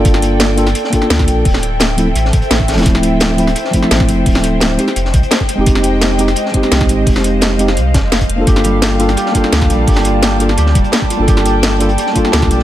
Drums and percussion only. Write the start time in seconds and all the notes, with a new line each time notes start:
0.05 kick, closed hi-hat
0.14 snare
0.22 closed hi-hat
0.40 snare, closed hi-hat
0.58 closed hi-hat
0.67 snare, closed hi-hat
0.75 closed hi-hat
0.84 snare
0.93 kick, closed hi-hat
1.02 snare
1.10 snare, closed hi-hat
1.19 kick, snare
1.28 closed hi-hat
1.45 kick, closed hi-hat, open hi-hat
1.54 snare
1.63 closed hi-hat
1.80 snare, closed hi-hat
1.98 closed hi-hat
2.16 closed hi-hat
2.25 snare
2.33 kick, closed hi-hat
2.42 closed hi-hat
2.50 snare, closed hi-hat
2.60 kick
2.68 snare, closed hi-hat
2.73 snare, closed hi-hat
2.77 snare, closed hi-hat
2.82 snare, closed hi-hat
2.85 kick, closed hi-hat
2.95 snare
3.03 closed hi-hat
3.20 snare, closed hi-hat
3.38 closed hi-hat
3.47 snare, closed hi-hat
3.55 closed hi-hat
3.65 snare
3.73 kick, closed hi-hat
3.83 snare
3.91 snare, closed hi-hat
4.00 kick, snare
4.08 closed hi-hat
4.26 kick, closed hi-hat, open hi-hat
4.35 snare
4.44 closed hi-hat
4.60 snare, closed hi-hat
4.79 closed hi-hat
4.88 snare
4.96 closed hi-hat
5.05 snare
5.14 kick, closed hi-hat
5.23 closed hi-hat
5.31 snare, closed hi-hat
5.40 kick
5.49 closed hi-hat
5.66 kick, closed hi-hat
5.75 snare
5.83 closed hi-hat
6.01 snare, closed hi-hat
6.18 closed hi-hat
6.28 snare, closed hi-hat
6.36 closed hi-hat
6.46 snare
6.54 kick, closed hi-hat
6.63 snare
6.72 snare, closed hi-hat
6.81 kick, snare
6.89 closed hi-hat
7.06 kick, closed hi-hat, open hi-hat
7.16 snare
7.24 closed hi-hat
7.41 snare, closed hi-hat
7.59 closed hi-hat
7.68 snare
7.77 closed hi-hat
7.94 kick, snare, closed hi-hat
8.12 snare, closed hi-hat
8.21 kick, closed hi-hat
8.30 closed hi-hat
8.47 kick, closed hi-hat
8.56 snare
8.64 closed hi-hat
8.82 snare, closed hi-hat
8.99 closed hi-hat
9.09 snare, closed hi-hat
9.17 closed hi-hat
9.26 snare
9.35 kick, closed hi-hat
9.44 snare
9.53 snare, closed hi-hat
9.61 kick, snare
9.70 closed hi-hat
9.87 kick, closed hi-hat, open hi-hat
9.95 snare
10.04 closed hi-hat
10.23 snare, closed hi-hat
10.40 closed hi-hat
10.49 snare
10.57 closed hi-hat
10.66 snare
10.75 kick, closed hi-hat
10.84 closed hi-hat
10.92 snare, closed hi-hat
11.02 kick
11.10 closed hi-hat
11.28 kick, closed hi-hat
11.37 snare
11.45 closed hi-hat
11.63 snare, closed hi-hat
11.80 closed hi-hat
11.89 closed hi-hat
11.98 closed hi-hat
12.06 snare
12.15 kick, closed hi-hat
12.25 snare
12.32 snare, closed hi-hat
12.42 kick, snare
12.51 closed hi-hat
12.60 snare